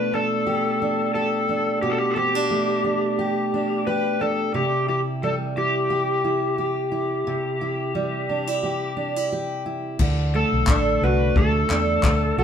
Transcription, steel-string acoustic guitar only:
0.00 1.81 B2 medium
0.00 2.49 A3 medium
0.00 0.12 D4 soft
0.13 0.81 D4 soft
0.47 1.15 G4 medium
0.82 1.48 D4 soft
1.15 3.18 G4 medium
1.49 2.16 D4 medium
1.83 4.54 B2 medium
2.16 2.35 C4 medium
2.35 2.83 D4 soft
2.50 4.62 A3 medium
2.84 3.53 D4 medium
3.19 3.87 G4 medium
3.54 4.20 D4 soft
3.87 5.90 G4 medium
4.21 4.63 D4 medium
4.54 7.26 C3 medium
4.88 5.55 E4 medium
5.23 7.94 G3 medium
5.57 6.23 E4 medium
5.90 6.57 G4 medium
6.24 6.90 E4 medium
6.58 8.62 G4 medium
6.92 7.60 E4 soft
7.27 9.99 C3 medium
7.61 8.29 E4 medium
7.95 10.07 G3 medium
8.29 8.47 D4 soft
8.47 8.96 E4 soft
8.63 9.31 G4 medium
8.97 9.16 D4 soft
9.16 9.65 E4 soft
9.32 10.07 G4 medium
9.66 10.07 E4 medium
10.01 12.44 D3 medium
10.34 11.36 A3 medium
10.69 11.69 D4 medium
11.03 12.37 F#4 medium
11.37 12.04 A3 medium
11.70 12.44 D4 medium
12.06 12.44 A3 medium
12.38 12.44 F#4 medium

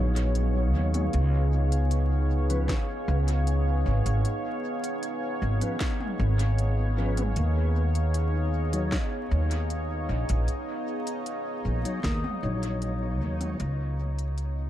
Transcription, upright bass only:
0.00 0.74 A#1 medium
0.74 1.09 D#2 medium
1.14 2.65 C#2 medium
3.08 3.82 C#2 medium
3.86 4.03 G#1 medium
4.06 4.23 G#1 medium
5.42 5.59 G#1 medium
6.19 7.33 G#1 loud
7.36 8.89 D#2 medium
9.31 10.06 D#2 medium
10.09 10.27 A#1 medium
10.30 10.46 A#1 medium
11.65 11.82 A#1 medium
12.04 12.21 D#2 loud
12.43 13.21 A#1 medium
13.21 13.55 D#2 medium
13.60 14.70 C#2 loud

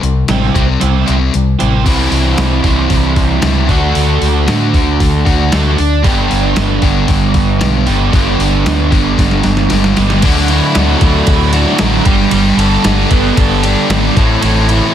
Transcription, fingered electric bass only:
0.02 0.23 C2 medium
0.28 0.48 A1 medium
0.55 0.75 C2 medium
0.82 1.02 C2 medium
1.09 1.28 C2 medium
1.35 1.54 C2 medium
1.61 1.85 A1 medium
1.85 2.11 C2 medium
2.11 2.37 C2 medium
2.38 2.63 C2 medium
2.64 2.89 C2 medium
2.90 3.41 C2 medium
3.43 3.68 C#2 medium
3.69 3.94 D2 medium
3.96 4.21 D2 medium
4.21 4.46 D2 medium
4.48 4.73 A2 medium
4.74 4.99 D2 medium
5.01 5.25 D2 loud
5.27 5.52 D2 medium
5.53 5.78 D2 medium
5.79 6.04 D2 medium
6.05 6.29 G1 medium
6.31 6.56 G1 medium
6.57 6.82 G1 medium
6.82 7.08 G1 medium
7.09 7.59 G1 medium
7.62 7.86 B1 medium
7.87 8.12 G1 medium
8.13 8.38 G1 medium
8.39 8.64 G1 medium
8.66 8.91 D2 medium
8.92 9.17 G1 medium
9.18 9.43 G1 medium
9.45 9.70 G1 medium
9.71 9.96 G1 medium
9.98 10.22 G1 medium
10.23 10.59 D2 loud
10.76 10.93 D2 medium
11.02 11.20 D2 medium
11.27 11.63 D2 loud
11.80 11.98 A1 medium
12.06 12.24 G1 medium
12.31 12.50 G1 medium
12.57 12.75 G1 medium
12.84 13.03 G1 medium
13.11 13.29 G1 medium
13.37 13.73 G1 loud
13.89 14.08 G#1 loud
14.16 14.35 A1 loud
14.43 14.79 A1 medium

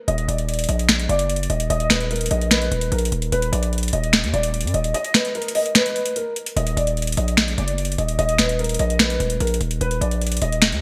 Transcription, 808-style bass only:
0.08 0.27 D#1 loud
0.28 0.67 D#1 loud
0.69 1.08 A#1 loud
1.09 1.48 F#1 loud
1.50 1.69 D#1 loud
1.70 1.90 D#1 loud
1.90 2.29 D#1 loud
2.31 2.70 A#1 loud
2.71 2.91 D#1 loud
2.92 3.11 A#1 loud
3.12 3.31 D#1 loud
3.32 3.52 D#1 loud
3.52 3.91 A#1 loud
3.93 4.25 D#1 loud
4.23 4.33 D#2 loud
4.34 4.66 D#1 loud
4.64 4.74 F#2 loud
4.74 4.94 D#1 loud
6.57 6.76 D#1 loud
6.77 7.16 D#1 loud
7.17 7.56 A#1 loud
7.58 7.97 F#1 loud
7.98 8.18 D#1 loud
8.19 8.38 D#1 loud
8.39 8.78 D#1 loud
8.79 9.18 A#1 loud
9.20 9.40 D#1 loud
9.40 9.60 A#1 loud
9.61 9.80 D#1 loud
9.81 10.00 D#1 loud
10.01 10.40 A#1 loud
10.42 10.74 D#1 loud
10.72 10.81 D#2 loud

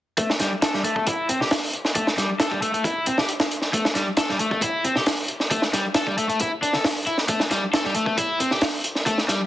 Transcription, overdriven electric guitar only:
0.18 0.29 A3 medium
0.40 0.51 G3 medium
0.63 0.73 A4 medium
0.74 0.83 G3 medium
0.85 0.95 A3 medium
0.96 1.05 A3 medium
1.07 1.28 E4 medium
1.29 1.39 C4 medium
1.40 1.49 G4 medium
1.96 2.07 A3 medium
2.18 2.29 G3 medium
2.40 2.50 A4 medium
2.51 2.60 G3 medium
2.62 2.72 A3 medium
2.74 2.83 A3 medium
2.85 3.06 E4 medium
3.07 3.17 C4 medium
3.19 3.27 G4 medium
3.73 3.84 A3 medium
3.95 4.06 G3 medium
4.18 4.28 A4 medium
4.30 4.38 G3 medium
4.40 4.51 A3 medium
4.52 4.61 A3 medium
4.62 4.84 E4 medium
4.85 4.95 C4 medium
4.96 5.05 G4 medium
5.51 5.62 A3 medium
5.74 5.84 G3 medium
5.96 6.06 A4 medium
6.07 6.16 G3 medium
6.18 6.28 A3 medium
6.29 6.38 A3 medium
6.40 6.50 E4 medium
6.62 6.73 D4 medium
6.74 6.83 A4 medium
7.07 7.16 E4 medium
7.29 7.40 A3 medium
7.51 7.62 G3 medium
7.73 7.84 A4 medium
7.85 7.94 G3 medium
7.96 8.06 A3 medium
8.07 8.16 A3 medium
8.17 8.39 E4 medium
8.40 8.50 C4 medium
8.51 8.60 G4 medium
9.07 9.18 A3 medium
9.29 9.40 G3 medium

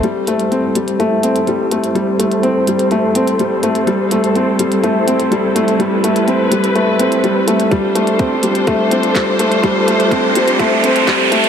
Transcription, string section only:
0.04 11.49 G3 medium
0.04 7.68 C4 medium
0.04 3.84 E4 medium
0.04 7.68 A4 medium
0.04 5.76 C5 medium
3.88 7.68 E4 medium
5.79 7.69 B4 medium
7.72 11.49 D4 medium
7.72 11.49 F4 medium
7.72 11.49 A4 medium
7.72 11.49 C5 medium

